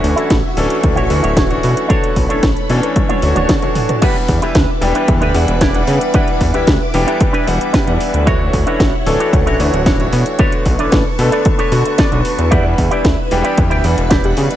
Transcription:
Already playing: E3 A3 C#4 D4 F#4 E5 C#6
0.04 D2, open hi-hat
0.16 E3 A3 C#4 D4 E4 F#4 A4, closed hi-hat
0.30 A1, kick, snare, closed hi-hat
0.56 D1 E3 A3 C#4 D4 A4, muted clean electric guitar stroke, open hi-hat
0.70 closed hi-hat
0.83 D2, kick, closed hi-hat
0.96 A1 E4 F#4 C#5, closed hi-hat
1.10 D2 E3 A3 C#4 D4 F#4, open hi-hat
1.23 D1 E4 F#4 C#5, closed hi-hat
1.37 kick, snare, closed hi-hat
1.50 E3 A3 C#4 D4 F#4, closed hi-hat
1.63 B2, open hi-hat
1.76 muted clean electric guitar stroke, closed hi-hat
1.88 D3 A3 B3 D4 F#4 A4 C#5 B5, kick, closed hi-hat
2.04 closed hi-hat
2.16 B1, kick, open hi-hat
2.29 A1 D3 A3 B3 C#4 D4 E4 A4 C#5, closed hi-hat
2.43 A1, kick, snare, closed hi-hat
2.57 closed hi-hat
2.69 B2 E3 A3 C#4 D4 A4, muted clean electric guitar stroke, open hi-hat
2.83 cross-stick, closed hi-hat
2.96 F#4 A5, kick, closed hi-hat, high tom
3.09 D4 F#4 C#5, closed hi-hat, high tom
3.22 D2 E3 A3 D4 F#4 C#5, open hi-hat
3.35 D1 D4 F#4 C#5, closed hi-hat, mid tom
3.49 kick, snare, closed hi-hat, mid tom
3.62 E3 A3 D4 F#4 C#5, cross-stick, closed hi-hat
3.75 mid tom, open hi-hat
3.89 muted clean electric guitar stroke, cross-stick, closed hi-hat, mid tom
4.01 E3 G3 B3 D4 E4 G4 B4 E5 F#5 D6, kick, closed hi-hat, crash
4.28 E2, muted clean electric guitar stroke, kick, open hi-hat
4.42 E3 G3 B3 D4 E4 G4 B4, closed hi-hat
4.55 D2, kick, snare, closed hi-hat
4.81 E1 E3 G3 B3 D4 G4, open hi-hat
4.95 D4 E4 G4 B4, closed hi-hat
5.08 E2, kick, closed hi-hat
5.21 D2 D4 E4 G4 B4, closed hi-hat
5.34 E2 E3 G3 B3 D4 F#5, open hi-hat
5.48 E1, muted clean electric guitar stroke, closed hi-hat
5.61 D4 E4 G4 D5, kick, snare, closed hi-hat
5.74 E3 G3 B3 D4 F#5, closed hi-hat
5.87 C#3, open hi-hat
6.01 muted clean electric guitar stroke, closed hi-hat
6.14 E3 G3 B3 D4 E4 G4 B4 F#5, kick, closed hi-hat
6.28 closed hi-hat
6.40 E2, muted clean electric guitar stroke, kick, open hi-hat
6.54 D2 E3 G3 B3 D4 E4 G4 B4, closed hi-hat
6.67 D2, kick, snare, closed hi-hat
6.94 E1 E3 G3 B3 D4 G4, open hi-hat
7.07 D4 E4 G4 A4, closed hi-hat
7.21 kick, closed hi-hat
7.33 D4 E4 G4 B4, closed hi-hat
7.47 E1 E3 G3 B3 D4 F#5, open hi-hat
7.60 muted clean electric guitar stroke, closed hi-hat
7.73 D4 E4 G4 B4, kick, snare, closed hi-hat
7.87 E2 E3 G3 B3 D4 F#5, closed hi-hat
8.00 open hi-hat
8.13 D2, muted clean electric guitar stroke, closed hi-hat
8.26 E3 A3 D4 E4 F#4 C#5 F#5, kick, closed hi-hat
8.53 D2, muted clean electric guitar stroke, kick, open hi-hat
8.66 E3 A3 C#4 D4 E4 F#4 C#5, closed hi-hat
8.80 A1, kick, snare, closed hi-hat
9.06 D1 E3 A3 D4 A4 C#5, open hi-hat
9.20 D4 E4 F#4 C#5, closed hi-hat
9.33 D2, kick, closed hi-hat
9.46 A1 D4 E4 F#4 C#5, closed hi-hat
9.59 D2 E3 A3 D4 F#4 C#5, open hi-hat
9.73 D1, muted clean electric guitar stroke, closed hi-hat
9.86 D4 E4 F#4 C#5, kick, snare, closed hi-hat
10.00 E3 A3 D4 F#4 C#5, closed hi-hat
10.13 B2, open hi-hat
10.26 muted clean electric guitar stroke, closed hi-hat
10.38 D3 A3 B3 D4 F#4 A4 B4 C#5 A5 C#6, kick, closed hi-hat
10.52 closed hi-hat
10.65 B1, muted clean electric guitar stroke, kick, open hi-hat
10.79 A1 D3 A3 B3 C#4 D4 E4 A4 B4 D5, closed hi-hat
10.92 A1, kick, snare, closed hi-hat
11.19 B2 D3 A3 B3 A4, open hi-hat
11.32 D4 A4 B4 D5, closed hi-hat
11.45 kick, closed hi-hat
11.58 D4 A4 B4 C#5, closed hi-hat
11.72 B2 D3 A3 B3 F#4, open hi-hat
11.85 muted clean electric guitar stroke, closed hi-hat
11.98 D4 A4 B4 D5, kick, snare, closed hi-hat
12.12 B1 D3 A3 B3 F#4, closed hi-hat
12.25 open hi-hat
12.37 E2, muted clean electric guitar stroke, closed hi-hat
12.51 E3 G3 B3 D4 E4 G4 B4 D5 E5 F#5, kick, closed hi-hat
12.78 E2, muted clean electric guitar stroke, kick, open hi-hat
12.90 E3 G3 B3 D4 E4 G4 B4 D5, closed hi-hat
13.05 D2, kick, snare, closed hi-hat
13.31 E1 E3 G3 B3 D4 G4, open hi-hat
13.44 E4 G4 B4 D5, closed hi-hat
13.58 E2, kick, closed hi-hat
13.70 D2 E4 G4 B4 D5, closed hi-hat
13.84 E2 E3 G3 B3 D4 F#5, open hi-hat
13.97 E1, muted clean electric guitar stroke, closed hi-hat
14.10 E4 G4 B4 D5, kick, snare, closed hi-hat
14.24 E3 G3 B3 D4 G4 F#5, closed hi-hat
14.37 C#3 G4, open hi-hat
14.50 muted clean electric guitar stroke, closed hi-hat

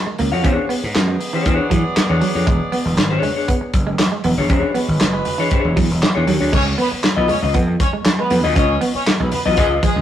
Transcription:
Already playing: A#3 F#4 C#5
0.07 G#3
0.19 C#2 A#3, open hi-hat
0.32 F2 F#4 C#5 F5
0.44 E2 B3 C#4 D4 G#4 C#5 D5, kick, closed hi-hat
0.57 muted clean electric guitar stroke
0.69 B3, open hi-hat
0.84 G#2
0.95 F#2, snare, clap, closed hi-hat
1.08 G#3
1.20 muted clean electric guitar stroke, open hi-hat
1.33 E3 D4 G#4 C#5
1.46 E2 D4 G#4 C#5, kick, closed hi-hat
1.70 E3 F#3, kick, closed hi-hat
1.96 muted slap bass stroke, snare, clap, closed hi-hat
2.09 E2 D4 G#4 C#5
2.21 F#3, open hi-hat
2.35 F2 D4 G#4 C#5
2.47 E1 G#3, kick, closed hi-hat, muted conga
2.72 B3, open hi-hat, muted conga
2.85 E1, muted clean electric guitar stroke
2.97 G#1, snare, clap, closed hi-hat, high conga
3.10 D4 G#4 C#5
3.22 G#3, open hi-hat, low conga
3.36 D4 G#4 C#5
3.48 B3, kick, closed hi-hat
3.61 muted clean electric guitar stroke
3.74 F#1, kick, closed hi-hat, muted conga
3.87 G#3
3.99 muted clean electric guitar stroke, snare, clap, closed hi-hat, high conga
4.12 G#3
4.24 E1 B3, open hi-hat, high conga
4.37 F1 D4 G#4 C#5
4.50 E1 G#3 C#4 D4 F#4 G#4 B4 C#5, kick, closed hi-hat, muted conga
4.63 muted clean electric guitar stroke
4.74 B3, open hi-hat, muted conga
4.88 G#1
5.00 F#1, snare, clap, closed hi-hat, high conga
5.13 G#3
5.25 muted clean electric guitar stroke, open hi-hat, low conga
5.38 E3 D4 G#4 C#5
5.51 D4 G#4 C#5, kick, closed hi-hat, muted conga
5.65 E1
5.76 E2 F#3, kick, open hi-hat, muted conga
5.91 E1
6.02 snare, clap, closed hi-hat, high conga
6.15 E2 D4 G#4 C#5
6.27 D#2 F#3, open hi-hat, high conga
6.40 D2 D4 G#4 C#5
6.53 C#2 G#3 C#4 C#5, kick, crash, muted conga
6.78 B3 B4, open hi-hat, muted conga
6.92 muted clean electric guitar stroke, muted slap bass stroke
7.03 snare, clap, closed hi-hat, high conga
7.16 B1 B3 F4 B4 D#5
7.28 G#3 C#4 C#5, open hi-hat, low conga
7.42 C#2 F4 B4 D#5
7.54 F2 B3, kick, closed hi-hat
7.68 muted clean electric guitar stroke
7.80 C#4 C#5, kick, closed hi-hat, muted conga, low conga
7.93 G#3
8.05 muted clean electric guitar stroke, snare, clap, closed hi-hat, high conga
8.19 G#3 B3 B4
8.30 F2 B3, open hi-hat, high conga
8.44 D2 F4 B4 D#5
8.56 C#2 C#4 F4 B4 C#5 D#5, kick, closed hi-hat, muted conga
8.69 muted clean electric guitar stroke
8.81 B3, open hi-hat, muted conga
8.95 C#4 C#5, muted slap bass stroke
9.07 snare, clap, closed hi-hat, high conga
9.20 B1 G#3 B3 B4
9.31 B3 B4, muted clean electric guitar stroke, open hi-hat, low conga
9.45 B1 E3 F4 B4 D#5
9.57 C#2 G#3 F4 G#4 B4 D#5, kick, closed hi-hat
9.83 F3 G#3 G#4, kick, closed hi-hat, muted conga
9.96 C#2

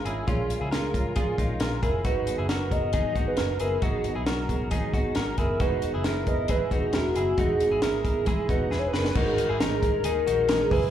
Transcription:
0.04 G#1 G#3 C#4 E4 F4 G#4 A#4, closed hi-hat
0.27 A#1 A#2 F3 G#3 C#4 F4 A#4, kick, closed hi-hat
0.48 G#3 C#4 F4 A#4, closed hi-hat
0.60 C#2 E4 G#4
0.71 G#3 C#4 F4 A#4, snare, closed hi-hat
0.93 G#3 C#4 F4 A#4, kick, closed hi-hat
1.15 A#2 F3 G#3 C#4 F4 G#4 A#4, kick, closed hi-hat
1.38 A#1 G#3 C#4 D#4 F4 A#4, kick, closed hi-hat
1.59 A#1 G#3 C#4 F4 A#4, snare, closed hi-hat
1.82 F1 G#3 C#4 E4 F4 G#4 A#4, kick, closed hi-hat
2.05 G#1 G#2 D#3 F#3 B3 D#4 F#4 G#4 B4, kick, closed hi-hat
2.26 F#3 B3 D#4 G#4, closed hi-hat
2.38 F#1 E4 G#4
2.48 F#3 B3 D#4 F#4 G#4 A#4, snare, closed hi-hat
2.71 F#3 B3 D#4 G#4 D#5, kick, closed hi-hat
2.93 G#2 D#3 F#3 B3 D#4 G#4 D#5, kick, closed hi-hat
3.15 G#1 F#3 B3 D#4 F#4 G#4, kick, closed hi-hat
3.28 B4
3.37 F#1 F#3 B3 D#4 F#4 G#4 A#4, snare, closed hi-hat
3.60 F#1 F#3 B3 D#4 E4 G#4 A#4, closed hi-hat
3.82 G#1 G#2 D#3 F#3 B3 D#4 F#4 G#4, kick, closed hi-hat
4.03 F#3 B3 D#4 G#4, closed hi-hat
4.15 B1 E4 G#4
4.26 F#3 B3 D#4 F#4 G#4 A#4, snare, closed hi-hat
4.48 F#3 B3 D#4 G#4, kick, closed hi-hat
4.70 G#2 D#3 F#3 B3 D#4 G#4, kick, closed hi-hat
4.93 G#1 F#3 B3 D#4 F#4 G#4, kick, closed hi-hat
5.15 G#1 F#3 B3 D#4 F#4 G#4 A#4, snare, closed hi-hat
5.37 F#1 F#3 B3 D#4 E4 G#4 A#4, kick, closed hi-hat
5.60 E1 E3 G#3 B3 D#4 F#4 G#4 B4, kick, closed hi-hat
5.82 B3 D#4 G#4, closed hi-hat
5.94 F#1 E4 G#4
6.04 G#3 B3 D#4 E4 G#4 A#4, snare, closed hi-hat
6.27 B3 D#4 G#4 D#5, kick, closed hi-hat
6.48 E3 G#3 B3 D#4 E4 G#4 B4, kick, closed hi-hat
6.71 E1 B3 D#4 F#4 G#4, kick, closed hi-hat
6.93 E1 G#3 B3 D#4 E4 F#4 G#4 A#4, snare, closed hi-hat
7.15 F#1 B3 D#4 E4 G#4, closed hi-hat
7.37 E1 E3 G#3 B3 D#4 F#4 G#4, kick, closed hi-hat
7.59 B3 D#4 G#4, closed hi-hat
7.71 G#1 E4 G#4
7.81 G#3 B3 D#4 E4 G#4 A#4, snare, closed hi-hat
8.04 B3 D#4 G#4, kick, closed hi-hat
8.25 E3 G#3 B3 D#4 E4 G#4, kick, closed hi-hat
8.48 E1 B3 D#4 F#4 G#4 B4, kick, closed hi-hat
8.70 E1 G#3 B3 D#4 E4 G#4, snare
8.79 C#5
8.87 B4
8.93 F#1 B3 D#4 G#4 B4, snare
8.97 A#4
9.05 B4, snare
9.15 G#1 G#2 D#3 G#3 D#4 F#4 G#4 A#4, kick, crash
9.37 G#3 D#4 G#4 A#4, closed hi-hat
9.49 G#1 E4 G#4
9.59 G#2 D#3 G#3 D#4 G#4 A#4, snare, closed hi-hat
9.81 G#3 D#4 G#4 A#4, kick, closed hi-hat
10.03 D#2 G#3 D#4 G#4 A#4, closed hi-hat
10.26 A#1 G#3 D#4 F#4 G#4 A#4, closed hi-hat
10.48 G#2 D#3 G#3 D#4 G#4 A#4, snare, closed hi-hat
10.70 F#1 G#3 D#4 E4 G#4 A#4 B4, kick, open hi-hat

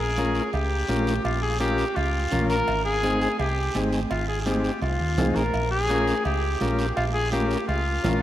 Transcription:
Already playing: A#1
0.00 G#4
0.17 C#4 F4 A#4, cowbell, high conga, short guiro
0.35 short guiro
0.53 C#2 G4, cowbell, high conga, long guiro
0.88 A#1 C#4 F4 A#4, cowbell, high conga, short guiro
1.07 short guiro
1.24 A#1 F4, cowbell, long guiro
1.42 G#4
1.60 C#4 F4 G4 A#4, cowbell, high conga, short guiro
1.78 short guiro
1.95 C#2 F4, cowbell, high conga, long guiro
2.31 A#1 C#4 F4 A#4, cowbell, high conga, low conga, short guiro
2.49 A#4, short guiro
2.68 G#1, cowbell, high conga, long guiro
2.85 G#4
3.03 C4 D#4 G#4, cowbell, high conga, short guiro
3.21 short guiro
3.39 C2 G4, cowbell, high conga, long guiro
3.75 G#1 C4 D#4 G#4, cowbell, high conga, short guiro
3.92 short guiro
4.11 G#1 F4, cowbell, high conga, long guiro
4.28 G#4
4.41 G#4
4.45 C4 D#4 G4 G#4, cowbell, high conga, short guiro
4.64 short guiro
4.82 C2 F4, cowbell, high conga, long guiro
5.00 D#2
5.18 C2 C4 D#4 G#4, cowbell, high conga, low conga, low timbale, short guiro
5.35 A#1 A#4, short guiro
5.54 A#1, cowbell, high conga, long guiro
5.71 G#4
5.90 C#4 F4 A#4, cowbell, high conga, short guiro
6.08 short guiro
6.25 C#2 G4, cowbell, long guiro
6.61 A#1 C#4 F4 A#4, cowbell, high conga, short guiro
6.79 short guiro
6.96 A#1 F4, cowbell, high conga, long guiro
7.14 G#4
7.32 C#4 F4 G4 A#4, cowbell, high conga, short guiro
7.51 short guiro
7.68 C#2 F4, cowbell, high conga, long guiro
8.03 A#1 C#4 F4 A#4, cowbell, high conga, low conga, low timbale, short guiro

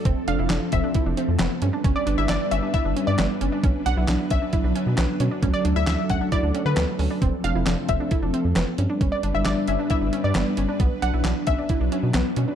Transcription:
Already playing: A4
0.05 F1 F3 C4, kick, closed hi-hat
0.28 F1 D4 F5, closed hi-hat
0.39 F1 E4
0.50 F1 D4, snare, clap, closed hi-hat
0.72 F1 C4 E5, kick, closed hi-hat
0.84 D4
0.94 E4, kick, closed hi-hat
1.06 F1 D4
1.17 C4, closed hi-hat
1.28 F2
1.39 F1 B3, snare, clap, closed hi-hat
1.62 G2 G3 C#4 D4 B4, closed hi-hat
1.73 D4
1.84 G1 C#4, kick, closed hi-hat
1.96 D5
2.07 G1 D4, closed hi-hat
2.18 G1 E4 E5
2.29 G1 D4 D5, snare, clap, closed hi-hat
2.51 G1 C#4 E5, closed hi-hat
2.63 D4
2.74 E4 E5, kick, closed hi-hat
2.85 G1 D4
2.96 C#4, closed hi-hat
3.07 G2 D5
3.19 G1 B3, snare, clap, closed hi-hat
3.41 G1 C#4, closed hi-hat
3.52 D4
3.64 B1 F#3 C#4 B4, kick, closed hi-hat
3.86 B1 D4 F#5, closed hi-hat
3.97 B1 E4
4.08 B1 D4, snare, clap, closed hi-hat
4.30 B1 C#4 E5, kick, closed hi-hat
4.42 D4
4.53 E4, kick, closed hi-hat
4.64 B1 D4
4.75 C#4, closed hi-hat
4.87 B2
4.98 B1 B3, snare, clap, closed hi-hat
5.20 B2 C#4, closed hi-hat
5.31 D4
5.42 D2 C#4 A4, kick, closed hi-hat
5.54 D5
5.65 D2 D4, closed hi-hat
5.76 D2 E4 E5
5.87 D2 D4 E5, snare, clap, closed hi-hat
6.10 D2 C#4 F#5, kick, closed hi-hat
6.21 D4
6.32 E4 D5, kick, closed hi-hat
6.43 D2 D4
6.54 C#4, closed hi-hat
6.66 D3 B4
6.77 D2 B3, snare, clap, closed hi-hat
6.99 D2 C#4, open hi-hat
7.10 D4
7.21 F1 F3 C4 A4, kick, closed hi-hat
7.44 F1 D4 F5, closed hi-hat
7.55 F1 E4
7.66 F1 D4, snare, clap, closed hi-hat
7.89 F1 C4 E5, kick, closed hi-hat
8.00 D4
8.11 E4, kick, closed hi-hat
8.22 F1 D4
8.34 C4, closed hi-hat
8.45 F2
8.56 F1 B3, snare, clap, closed hi-hat
8.78 G2 G3 C#4 D4 B4, closed hi-hat
8.90 D4
9.01 G1 C#4, kick, closed hi-hat
9.12 D5
9.23 G1 D4, closed hi-hat
9.34 G1 E4 E5
9.45 G1 D4 D5, snare, clap, closed hi-hat
9.68 G1 C#4 E5, closed hi-hat
9.79 D4
9.90 E4 E5, kick, closed hi-hat
10.02 G1 D4
10.13 C#4, closed hi-hat
10.24 G2 D5
10.35 G1 B3, snare, clap, closed hi-hat
10.57 G1 C#4, closed hi-hat
10.69 D4
10.80 B1 F#3 B3 D4, kick, closed hi-hat
11.02 B1 D4 F#5, closed hi-hat
11.14 B1 E4
11.25 B1 D4, snare, clap, closed hi-hat
11.47 B1 C#4 E5, kick, closed hi-hat
11.58 D4
11.69 E4, kick, closed hi-hat
11.81 B1 D4
11.92 C#4, closed hi-hat
12.03 B2
12.14 B1 B3, snare, clap, closed hi-hat
12.36 B2 C#4, closed hi-hat
12.48 D4

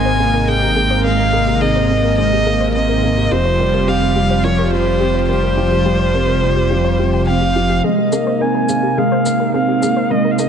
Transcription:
Already playing: G#1 C3 G#3 A#3 C4 D#4 A#4 G#5
0.05 C5
0.20 A#3 A#4
0.34 A#4
0.48 C4 G#4 G5
0.62 G4
0.76 A#3 G#4
0.90 C5
1.04 G#3 A#4 F5
1.19 A#4
1.33 A#3 G#4
1.47 G4
1.61 C4 G#4 D#5
1.76 C5
1.90 A#3 A#4
2.04 A#4
2.18 G#3 G#4 D#5
2.32 G4
2.46 A#3 G#4
2.61 C5
2.74 C4 A#4 D#5
2.89 A#4
3.03 A#3 G#4
3.17 G4
3.31 F1 F3 G3 F4 G4 C5
3.45 C5
3.60 G3 A#4
3.74 A#4
3.88 C4 G4 F5
4.02 G4
4.16 G3 G4
4.30 C5
4.44 F3 A#4 C#5
4.59 A#4
4.72 G3 G4 C5
4.87 G4
5.00 C4 G4
5.15 C5
5.29 G3 A#4 C5
5.43 A#4
5.57 F3 G4
5.71 G4
5.85 G3 G4
5.99 C5
6.14 C4 A#4
6.28 A#4
6.42 G3 G4
6.56 G4
6.70 F3 G4
6.85 C5
6.99 F3 G4
7.13 G5
7.27 C4 F5 G5
7.41 G4
7.56 F3 G4
7.69 G4
7.84 C3 G#3 A#3 D#4 G#4 A#4 D#5
7.98 G4
8.12 A#3 G#4, shaker
8.27 C5
8.41 C4 A#4 G#5
8.55 A#4
8.69 A#3 G#4, shaker
8.83 G4
8.98 G#3 G#4 F5
9.12 C5
9.26 A#3 A#4, shaker
9.40 A#4
9.54 C4 G#4 F5
9.68 G4
9.82 A#3 G#4, shaker
9.97 C5
10.10 G#3 A#4 C5 D#5
10.25 A#4
10.31 F5
10.39 A#3 G#4 D#5, shaker

